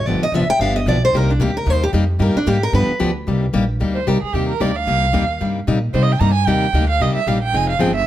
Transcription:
0.06 upright bass G1, steel-string acoustic guitar D3 F3 B3 D4 G4 D5
0.21 steel-string acoustic guitar D#5, muted upright bass stroke
0.32 upright bass F1, steel-string acoustic guitar D3 F3 B3 D4 G4 E5
0.48 steel-string acoustic guitar G5, muted upright bass stroke
0.59 upright bass G1, steel-string acoustic guitar D3 F3 B3 D4 G4 F5
0.76 steel-string acoustic guitar D#5
0.86 upright bass B1, steel-string acoustic guitar D3 F3 B3 D4 G4 D5
1.05 steel-string acoustic guitar C5
1.13 upright bass C2, steel-string acoustic guitar C3 G3 A#3 D#4 G4 A#4
1.30 steel-string acoustic guitar D4
1.40 upright bass D2, steel-string acoustic guitar C3 G3 A#3 D#4 G4
1.57 steel-string acoustic guitar A#4
1.66 upright bass D#2, steel-string acoustic guitar C3 G3 A#3 D#4 G4
1.70 steel-string acoustic guitar C5
1.84 steel-string acoustic guitar G4
1.93 upright bass F2, steel-string acoustic guitar C3 G3 A#3 D#4 G4
2.19 upright bass G2, steel-string acoustic guitar C3 G3 A#3 D#4 G4 A#4
2.35 steel-string acoustic guitar D4, muted upright bass stroke
2.46 upright bass G#2, steel-string acoustic guitar C3 G3 A#3 D#4 G4
2.63 steel-string acoustic guitar A#4
2.73 upright bass G2, steel-string acoustic guitar D3 F3 B3 D4 G4 B4
2.99 upright bass D2, steel-string acoustic guitar D3 F3 B3 D4 G4
3.27 upright bass C2, steel-string acoustic guitar C3 G3 A#3 D#4 G4
3.53 upright bass A#1, steel-string acoustic guitar C3 G3 A#3 D#4 G4
3.80 upright bass D2, steel-string acoustic guitar C3 G3 A#3 D#4 G4
3.94 violin C5
4.07 upright bass C2, steel-string acoustic guitar C3 G3 A#3 D#4 G4, violin A#4
4.22 violin G#4, muted upright bass stroke
4.33 upright bass D#2, steel-string acoustic guitar C3 G3 A#3 D#4 G4, violin G4
4.49 violin A#4
4.60 upright bass D2, steel-string acoustic guitar C3 G3 A#3 D#4 G4, violin D5
4.75 violin F5
4.87 upright bass C2, steel-string acoustic guitar C3 G3 A#3 D#4 G4
5.13 upright bass D#2, steel-string acoustic guitar C3 G3 A#3 D#4 G4
5.41 upright bass G2, steel-string acoustic guitar C3 G3 A#3 D#4 G4
5.67 upright bass A#2, steel-string acoustic guitar C3 G3 A#3 D#4 G4
5.93 upright bass C3, steel-string acoustic guitar C3 G3 A#3 D#4 G4, violin C5
6.03 violin D#5
6.12 violin G5
6.20 upright bass G2, steel-string acoustic guitar C3 G3 A#3 D#4 G4, violin A#5
6.34 violin G#5
6.47 upright bass D#2, steel-string acoustic guitar C3 G3 A#3 D#4 G4, violin G5
6.73 upright bass D2, steel-string acoustic guitar C3 G3 A#3 D#4 G4
6.89 violin F5
7.00 upright bass C2, steel-string acoustic guitar C3 G3 A#3 D#4 G4, violin D#5
7.15 violin E5
7.26 upright bass A#1, steel-string acoustic guitar C3 G3 A#3 D#4 G4, violin F5
7.43 violin G5
7.53 upright bass F1, steel-string acoustic guitar F3 C4 D#4 G#4, violin G#5
7.69 violin F5
7.79 upright bass G1, steel-string acoustic guitar F3 C4 D#4 G#4, violin G5
7.95 violin E5

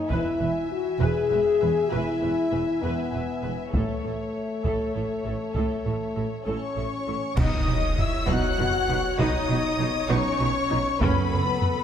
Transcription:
0.10 double bass section E1, cello section E2, french horn section E4, viola section B4, violin section E5 G#5, taiko
0.40 double bass section E1, cello section E2, viola section B4
0.71 french horn section F#4
1.00 double bass section E1, cello section E2, french horn section G#4, viola section B4
1.31 double bass section E1, cello section E2, viola section B4
1.61 double bass section E1, cello section E2, viola section B4
1.92 double bass section E1, cello section E2, french horn section E4, viola section B4
2.22 double bass section E1, cello section E2, viola section B4
2.52 double bass section E1, cello section E2, viola section B4
2.81 double bass section E1, cello section E2, french horn section B3, viola section B4
3.13 double bass section E1, cello section E2, viola section B4
3.42 double bass section E1, cello section E2, viola section B4
3.72 double bass section A1, cello section A2, french horn section A3, viola section A4, violin section C#5 E5, taiko
4.03 double bass section A1, cello section A2, viola section A4
4.64 double bass section A1, cello section A2, viola section A4, taiko
4.94 double bass section A1, cello section A2, viola section A4
5.24 double bass section A1, cello section A2, viola section A4
5.55 double bass section A1, cello section A2, viola section A4, taiko
5.85 double bass section A1, cello section A2, viola section A4
6.15 double bass section A1, cello section A2, viola section A4
6.45 double bass section A1, cello section A2, french horn section C#4, viola section A4, violin section C#5 C#6
6.76 double bass section A1, cello section A2, viola section A4
7.07 double bass section A1, cello section A2, viola section A4
7.37 double bass section B1, cello section B2, viola section D#4 C#5, french horn section D#4, violin section D#5 D#6, concert bass drum, taiko, crash, impact
7.67 double bass section B1, cello section B2, viola section D#4
7.98 french horn section E4, violin section E5 E6, taiko low
8.27 double bass section B1, cello section B2, viola section D#4, french horn section F#4, violin section F#5 F#6, taiko
8.58 double bass section B1, cello section B2, viola section D#4, taiko low
8.88 double bass section B1, cello section B2, viola section D#4
9.19 double bass section B1, cello section B2, french horn section D#4, viola section D#4, violin section D#5 D#6, taiko
9.48 double bass section B1, cello section B2, viola section D#4
9.79 double bass section B1, cello section B2, viola section D#4
10.09 double bass section B1, cello section B2, french horn section C#4, viola section D#4, violin section C#5 C#6
10.40 double bass section B1, cello section B2, viola section D#4
10.70 double bass section B1, cello section B2, viola section D#4
11.00 double bass section F#1, cello section F#2, timpani F#2, french horn section B3, viola section C#4 A4, violin section B4 B5, taiko
11.30 double bass section F#1, cello section F#2, viola section C#4
11.62 taiko low

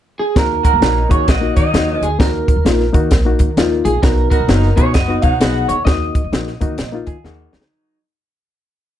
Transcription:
0.19 clean electric guitar G#4
0.36 upright bass D#2, reed electric piano A#3 D#4 F#4, clean electric guitar A#4, kick, snare, closed hi-hat
0.63 saxophone section A#3 D#4 F#4, clean electric guitar A#4, kick, closed hi-hat
0.73 upright bass D#2
0.81 upright bass A#1, saxophone section F#3 A#3 D#4, reed electric piano A#3 D#4 F#4, snare, closed hi-hat
1.09 upright bass D#3, reed electric piano A#3 D#4 F#4, saxophone section C#4 F4 G#4, clean electric guitar C#5, kick, closed hi-hat
1.27 upright bass A#1, saxophone section A#3 D#4 F#4, clean electric guitar D#5, kick, snare, closed hi-hat
1.41 reed electric piano A#3 D#4 F#4
1.56 upright bass D#3, saxophone section F#3 A#3 D#4, clean electric guitar D#5, kick, closed hi-hat
1.73 upright bass D#2, saxophone section F#3 A#3 D#4, reed electric piano A#3 D#4 F#4, snare, closed hi-hat
2.01 upright bass D2, clean electric guitar G#4, closed hi-hat
2.19 upright bass D#2, reed electric piano A#3 D#4 F#4, clean electric guitar A#4, kick, snare, closed hi-hat
2.48 kick, closed hi-hat
2.56 upright bass D#2
2.65 upright bass A#1, reed electric piano A#3 D#4 F4, snare, closed hi-hat
2.80 snare
2.93 upright bass D#3, reed electric piano A#3 D#4 F#4, kick, closed hi-hat
3.11 upright bass A#1, kick, snare, closed hi-hat
3.25 reed electric piano A#3 D#4 F#4
3.39 upright bass D#3, kick, closed hi-hat
3.57 upright bass D#2, reed electric piano A#3 D#4 F4, snare, closed hi-hat
3.85 upright bass A#1, clean electric guitar G#4, closed hi-hat
4.03 upright bass B1, reed electric piano B3 D#4 F#4, clean electric guitar A#4, kick, snare, closed hi-hat
4.30 saxophone section B3 D#4 F#4, clean electric guitar A#4, kick, closed hi-hat
4.40 upright bass B1
4.48 upright bass F#1, saxophone section F#3 B3 D#4, reed electric piano B3 D#4 F#4, snare, closed hi-hat
4.63 snare
4.76 upright bass B2, reed electric piano B3 D#4 F#4, saxophone section C#4 F4 G#4, clean electric guitar C#5, kick, closed hi-hat
4.94 upright bass F#1, saxophone section B3 D#4 F#4, clean electric guitar D#5, kick, snare, closed hi-hat
5.08 reed electric piano B3 D#4 F#4
5.22 upright bass B2, saxophone section F#3 B3 D#4, clean electric guitar F#5, kick, closed hi-hat
5.40 upright bass B1, reed electric piano B3 D#4 G#4, saxophone section B3 D#4 F#4, snare, closed hi-hat
5.69 upright bass D#2, clean electric guitar C#5, closed hi-hat
5.85 upright bass D#2, reed electric piano A#3 D#4 F#4, clean electric guitar D#5, kick, snare, closed hi-hat
6.15 kick, closed hi-hat
6.24 upright bass D#2
6.32 upright bass A#1, reed electric piano A#3 D#4 F#4, snare, closed hi-hat
6.47 snare
6.61 upright bass D#3, reed electric piano A#3 D#4 F#4, kick, closed hi-hat
6.78 upright bass A#1, snare, closed hi-hat
6.92 reed electric piano A#3 D#4 F4
7.07 upright bass D#3, clean electric guitar G#4, kick, closed hi-hat
7.24 upright bass D#2, reed electric piano A#3 D#4 G#4, clean electric guitar A#3 F#4, snare
7.53 upright bass D2, clean electric guitar F#3 D#4, snare
7.62 snare

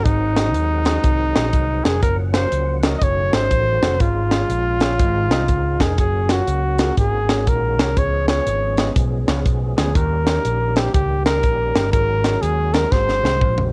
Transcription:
0.04 picked electric bass G#1, grand piano G#2, tonewheel organ D#3 F#3 G#3 C4 F#5, trumpet D#4, kick, closed hi-hat
0.36 grand piano C4 F#4 G#4 D#5, snare, closed hi-hat
0.54 picked electric bass D#2, closed hi-hat
0.85 grand piano C4 F#4 G#4 D#5, snare, closed hi-hat
1.04 picked electric bass C2, kick, closed hi-hat
1.35 picked electric bass A#1, grand piano C4 F#4 G#4 D#5, snare, closed hi-hat
1.53 picked electric bass C2, kick, closed hi-hat
1.84 picked electric bass F1, grand piano C4 F#4 G#4 A#4, trumpet G#4, snare, closed hi-hat
2.02 picked electric bass F#1, tonewheel organ F3 A#3 C#4, trumpet A#4, kick, closed hi-hat
2.34 grand piano C#4 F#4 A#4 F5, trumpet C5, snare, closed hi-hat
2.52 picked electric bass C#2, closed hi-hat
2.83 grand piano C#4 F#4 A#4 D#5, snare, closed hi-hat
2.98 picked electric bass F#1, tonewheel organ D#3 A3 F#4, trumpet D#5, closed hi-hat
3.02 trumpet C#5, kick
3.33 picked electric bass G#1, grand piano C#4 F#4 A4 D#5, trumpet C5, snare, closed hi-hat
3.51 picked electric bass A1, kick, closed hi-hat
3.82 picked electric bass F1, grand piano C#4 F#4 A4 F#5, snare, closed hi-hat
4.00 picked electric bass G#1, grand piano G#2, tonewheel organ G#3 F4, trumpet F4, kick, closed hi-hat
4.31 grand piano C#4 F4 G#4 F5, snare, closed hi-hat
4.50 picked electric bass A#1, closed hi-hat
4.80 grand piano C#4 F4 G#4 C#5, snare, closed hi-hat
4.99 picked electric bass G#1, grand piano G#2, tonewheel organ G#3 C4 D#4, kick, closed hi-hat
5.31 picked electric bass C2, grand piano C4 D#4 G#4 D#5, snare, closed hi-hat
5.48 picked electric bass C#2, kick, closed hi-hat
5.80 picked electric bass F1, grand piano C4 D#4 G#4 A#4, trumpet G#4, kick, snare, closed hi-hat
5.97 picked electric bass F#1, tonewheel organ C#3 F#3 A#3 C#4 F#4, trumpet G#4, kick, closed hi-hat
6.29 grand piano A#3 F4 F#4 C#5, trumpet F#4, snare, closed hi-hat
6.47 picked electric bass C#2, closed hi-hat
6.79 grand piano A#3 F4 F#4 G#4, snare, closed hi-hat
6.97 picked electric bass G#1, grand piano G#2, tonewheel organ D#3 G#3 A#3 F#4, trumpet G#4, kick, closed hi-hat
7.29 grand piano A#3 F#4 G#4 C#5, snare, closed hi-hat
7.47 picked electric bass A#1, trumpet A#4, kick, closed hi-hat
7.79 picked electric bass C2, grand piano A#3 F#4 G#4 C#5, snare, closed hi-hat
7.97 picked electric bass C#2, grand piano C#3, tonewheel organ F3 B3 G#4, trumpet C#5, kick, closed hi-hat
8.28 grand piano B3 F4 G#4 C#5, trumpet C#5, snare, closed hi-hat
8.47 picked electric bass G#1, closed hi-hat
8.77 grand piano B3 F4 G#4 D#5, snare, closed hi-hat
8.96 picked electric bass B1, kick, closed hi-hat
9.28 picked electric bass C#2, grand piano B3 F4 G#4 C#5, snare, closed hi-hat
9.46 picked electric bass B1, kick, closed hi-hat
9.77 picked electric bass D2, grand piano B3 F4 G#4 C#5, trumpet G#4, snare, closed hi-hat
9.95 picked electric bass D#2, grand piano D#3, tonewheel organ D#3 G3 A#3 G4, trumpet A#4, kick, closed hi-hat
10.26 grand piano A#3 D#4 G4 C#5, snare, closed hi-hat
10.45 picked electric bass A#1, closed hi-hat
10.76 grand piano A#3 D#4 G4 C5, trumpet G4, snare, closed hi-hat
10.94 picked electric bass C#2, trumpet G4, kick, closed hi-hat
11.25 grand piano A#3 D#4 G4 A#4, trumpet A#4, snare, closed hi-hat
11.43 picked electric bass A#1, kick, closed hi-hat
11.75 picked electric bass G1, grand piano A#3 D#4 G4 A#4, snare, closed hi-hat
11.92 picked electric bass G#1, grand piano G#2, tonewheel organ F#3 G#3 F#4, trumpet A#4, kick, closed hi-hat
12.24 grand piano G#3 D#4 F#4 C#5, snare, closed hi-hat
12.42 picked electric bass D#2, trumpet G#4, closed hi-hat
12.73 grand piano G#3 D#4 F#4 A#4, trumpet A#4, snare, closed hi-hat
12.92 picked electric bass G#1, grand piano G#2, tonewheel organ C4, trumpet C5, kick, snare
13.09 snare
13.23 picked electric bass C2, grand piano G#3 D#4 F#4 C5, snare
13.41 picked electric bass A#1, kick, mid tom
13.58 floor tom

